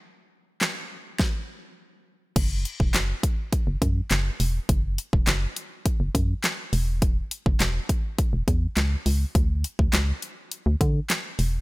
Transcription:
<<
  \new Staff \with { instrumentName = "FM bass" } { \clef bass \time 4/4 \key cis \phrygian \tempo 4 = 103 r1 | fis,,8. e,,16 fis,,8 r8. fis,,16 fis,8 fis,,8 e,,8 | fis,,8. e,,16 fis,,8 r8. fis,,16 fis,8 r8 e,,8~ | e,,8. fis,,16 e,,8 r8. e,,16 e,8 cis,8 cis,8 |
d,8. d,16 cis,8 r8. d,16 d8 r8 e,,8 | }
  \new DrumStaff \with { instrumentName = "Drums" } \drummode { \time 4/4 r4 <hc sn>4 <bd sn>4 r4 | <cymc hh bd>8 hh16 bd16 <hc hh sn>8 <hh bd>8 <hh bd>8 <hh bd>8 <hc hh sn>8 hho8 | <hh bd>8 hh16 bd16 <hc hh sn>8 hh8 <hh bd>8 <hh bd>8 <hc hh sn>8 hho8 | <hh bd>8 hh16 bd16 <hc hh sn>8 <hh bd>8 <hh bd>8 <hh bd>8 <hc hh sn>8 hho8 |
<hh bd>8 hh16 bd16 <hc hh sn>8 hh8 hh8 <hh bd>8 <hc hh sn>8 hho8 | }
>>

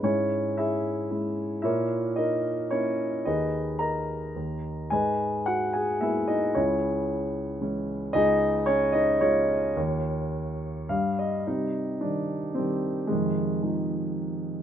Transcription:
<<
  \new Staff \with { instrumentName = "Grand piano" } { \time 3/4 \key cis \dorian \tempo 4 = 111 << { cis''4 e''4. r8 | e''4 dis''4 cis''4 | dis''4 ais''4. r8 | gis''4 fis''8 gis''8 e''8 dis''8 |
cis''2~ cis''8 r8 | dis''4 cis''8 dis''8 cis''4~ | cis''2 eis''8 dis''8 | \key c \minor ees'4 d'4 c'4 |
aes2 r4 | } \\ { <cis' e' gis'>4 <e' gis'>4. r8 | <e' ais' cis''>4 <dis' ais'>4 <cis' e'>4 | <dis' gis' b'>4 <ais' dis''>4. r8 | <gis' b' dis''>4 fis'8 gis'8 e'8 dis'8 |
<cis' e' gis'>2~ <cis' e' gis'>8 r8 | <dis' gis'>4 cis'8 dis'8 eis'4~ | eis'2 r4 | <g c'>4. r8 <ees g>4 |
<c ees>2 r4 | } >> }
  \new Staff \with { instrumentName = "Grand piano" } { \clef bass \time 3/4 \key cis \dorian gis,2 <gis cis' e'>4 | ais,2 ais4 | dis,2 dis,4 | gis,2 <gis ais b>4 |
cis,2 <e gis cis'>4 | cis,2 <eis gis cis'>4 | dis,2 g,4 | \key c \minor c4 <ees g c'>4 r4 |
f,4 <f aes ees'>4 r4 | }
>>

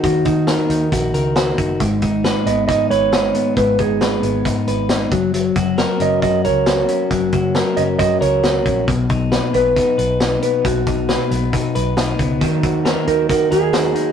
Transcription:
<<
  \new Staff \with { instrumentName = "Clean electric guitar" } { \time 4/4 \key ees \minor \tempo 4 = 136 ges'8 ees'4. r2 | r4. ees''8 ees''8 des''4. | ces''8 aes'4. r2 | r4. ees''8 ees''8 des''4. |
r4. ees''8 ees''8 des''4. | r4. b'2 b'8 | fis'2. r4 | r4. bes'8 bes'8 aes'4. | }
  \new Staff \with { instrumentName = "Clean electric guitar" } { \time 4/4 \key ees \minor <ees ees' ges' bes'>8 ges'8 bes'8 ees'8 ges'8 bes'8 ges'8 ees'8 | aes,8 ees'8 ces''8 ces'8 ees'8 ces''8 ees'8 ces'8 | aes,8 ees'8 ces''8 ces'8 ees'8 ces''8 ees'8 ges8 | ges8 ges'8 bes'8 des'8 ges'8 bes'8 ges'8 des'8 |
ges8 ges'8 bes'8 des'8 ges'8 bes'8 ges'8 des'8 | b,8 dis'8 b'8 b8 dis'8 b'8 dis'8 b8 | b,8 dis'8 b'8 b8 dis'8 b'8 dis'8 b8 | ees8 ges'8 bes'8 ees'8 ges'8 bes'8 ges'8 ees'8 | }
  \new Staff \with { instrumentName = "Clean electric guitar" } { \time 4/4 \key ees \minor r1 | r1 | r1 | r1 |
r1 | r1 | r1 | <ees ges bes ees'>4 <ees ges bes ees'>8 <ges bes ees'>4 <ges bes ees'>8 <ees ges bes ees'>4 | }
  \new Staff \with { instrumentName = "Picked electric bass" } { \clef bass \time 4/4 \key ees \minor ees,8 ees,8. r16 ees,8 bes,,8 des,4 ges,,8 | aes,,8 aes,,8. r16 aes,,8 aes,8 aes,,4 r8 | aes,,8 aes,,4 aes,,8 aes,8 aes,,4 ges,,8~ | ges,,8 ges,,8. r16 ges,,8 ges,8 des,4 r8 |
ges,,8 ges,,8. r16 ges,,8 ges,8 des,4 bes,,8 | b,,8 b,,8. r16 b,,8 b,8 b,,4 r8 | b,,8 b,,8. r16 b,,8 b,8 b,,4 des,8 | ees,8 ees,8. r16 ees,8 ees8 ees,4 r8 | }
  \new DrumStaff \with { instrumentName = "Drums" } \drummode { \time 4/4 <hh bd>8 <hh bd>8 <hh sn>8 hh8 <hh bd>8 hh8 <hh sn>8 <hh bd>8 | <hh bd>8 <hh bd>8 <hh sn>8 hh8 <hh bd>8 hh8 <hh sn>8 hh8 | <hh bd>8 <hh bd>8 <hh sn>8 hh8 <hh bd>8 hh8 <hh sn>8 <hh bd>8 | hh8 <hh bd>8 <hh sn>8 hh8 <hh bd>8 hh8 <hh sn>8 hh8 |
<hh bd>8 <hh bd>8 <hh sn>8 hh8 <hh bd>8 hh8 <hh sn>8 <hh bd>8 | <hh bd>8 <hh bd>8 <hh sn>8 hh8 <hh bd>8 hh8 <hh sn>8 hh8 | <hh bd>8 <hh bd>8 <hh sn>8 hh8 <hh bd>8 hh8 <hh sn>8 <hh bd>8 | <hh bd>8 <hh bd>8 <hh sn>8 hh8 <hh bd>8 hh8 <hh sn>8 hh8 | }
>>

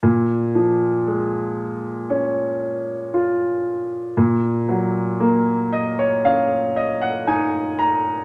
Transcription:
<<
  \new Staff \with { instrumentName = "Upright piano" } { \time 4/4 \key bes \minor \tempo 4 = 58 r1 | r4. ees''16 des''16 f''8 ees''16 ges''16 aes''8 bes''8 | }
  \new Staff \with { instrumentName = "Upright piano" } { \time 4/4 \key bes \minor bes,8 f8 aes4 des'4 f'4 | bes,8 ges8 bes4 des'4 ees'4 | }
>>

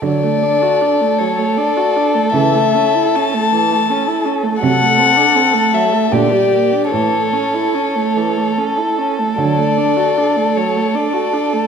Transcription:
<<
  \new Staff \with { instrumentName = "Violin" } { \time 3/4 \key d \major \tempo 4 = 77 d''4. cis''8 d''4 | e''4 a''4. r8 | fis''4. e''8 d''4 | cis''2 r4 |
d''4. cis''8 d''4 | }
  \new Staff \with { instrumentName = "Violin" } { \time 3/4 \key d \major a'2.~ | a'2. | a'2 g'4 | a'2.~ |
a'2. | }
  \new Staff \with { instrumentName = "Viola" } { \time 3/4 \key d \major fis16 a16 d'16 fis'16 d'16 a16 fis16 a16 d'16 fis'16 d'16 a16 | e16 a16 cis'16 e'16 cis'16 a16 e16 a16 cis'16 e'16 cis'16 a16 | fis16 a16 c'16 d'16 c'16 a16 fis16 a16 d16 g16 bes16 d'16 | e16 a16 cis'16 e'16 cis'16 a16 e16 a16 cis'16 e'16 cis'16 a16 |
fis16 a16 d'16 fis'16 d'16 a16 fis16 a16 d'16 fis'16 d'16 a16 | }
  \new Staff \with { instrumentName = "Cello" } { \clef bass \time 3/4 \key d \major d4 r2 | cis4 r2 | c4 r4 bes,4 | a,4 r2 |
d4 r2 | }
>>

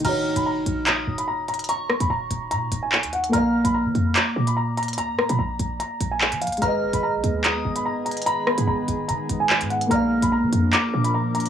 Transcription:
<<
  \new Staff \with { instrumentName = "Synth bell" } { \time 4/4 \key ees \minor \tempo 4 = 146 f'''2 ees'''4 r4 | des'''1 | f'''2 d'''4 r4 | bes''1 |
f'''2 ees'''4 r4 | ces'''1 | f'''2 d'''4 r4 | }
  \new Staff \with { instrumentName = "Grand piano" } { \time 4/4 \key ees \minor bes''8. ces'''16 bes''4 bes''8. ces'''16 bes''8 bes''8 | bes''8. ces'''16 bes''4 bes''8. aes''8. ges''8 | bes''8. ces'''16 bes''4 bes''8. ces'''16 bes''8 bes''8 | bes''8. ces'''16 bes''4 bes''8. aes''8. f''8 |
bes''8. ces'''16 bes''4 bes''8. ces'''16 bes''8 bes''8 | bes''8. ces'''16 bes''4 bes''8. aes''8. ges''8 | bes''8. ces'''16 bes''4 bes''8. ces'''16 bes''8 bes''8 | }
  \new Staff \with { instrumentName = "Grand piano" } { \time 4/4 \key ees \minor <ees ees' ges' des''>1~ | <ees ees' ges' des''>1 | <bes bes' d'' f''>1~ | <bes bes' d'' f''>1 |
<aes aes' ces'' ees''>1~ | <aes aes' ces'' ees''>1 | <bes bes' d'' f''>1 | }
  \new Staff \with { instrumentName = "Ambient pad" } { \time 4/4 \key ees \minor r1 | r1 | r1 | r1 |
<ees aes ces' aes'>1~ | <ees aes ces' aes'>1 | <f bes d' bes'>1 | }
  \new Staff \with { instrumentName = "808-style bass" } { \clef bass \time 4/4 \key ees \minor ees,,8 des,,16 ees,,8 ges,,16 bes,,4 ees,,4.~ | ees,,8. ees,16 ees,,8 ees,,8 bes,8 ees,,8. ees,8. | bes,,8. bes,,8 f16 f,8 r8 bes,4. | d,16. bes,16. bes,16 bes,,8 bes,,8 r8 bes,,8. f16. bes,,16. |
aes,,8 ges,,16 aes,,8 ces,16 ees,4 aes,,4.~ | aes,,8. aes,16 aes,,8 aes,,8 ees8 aes,,8. aes,8. | bes,,8. bes,,8 f16 f,8 r8 bes,4. | }
  \new DrumStaff \with { instrumentName = "Drums" } \drummode { \time 4/4 <cymc hh>8. hh16 r8 hh8 <hc hh>8. hh16 r8 hh32 hh32 hh32 hh32 | hh8 ss16 hh16 r8 hh8 hh8 hh8 hc16 hh16 hh16 hh16 | hh8. hh16 r8 hh8 <hc hh>8. hh16 r8 hh32 hh32 hh32 hh32 | hh8 ss16 hh16 r8 hh8 hh8 hh8 hc16 hh16 hh32 hh32 hh32 hh32 |
hh8. hh16 r8 hh8 <hc hh>8. hh16 r8 hh32 hh32 hh32 hh32 | hh8 ss16 hh16 r8 hh8 hh8 hh8 hc16 hh16 hh16 hh16 | hh8. hh16 r8 hh8 <hc hh>8. hh16 r8 hh32 hh32 hh16 | }
>>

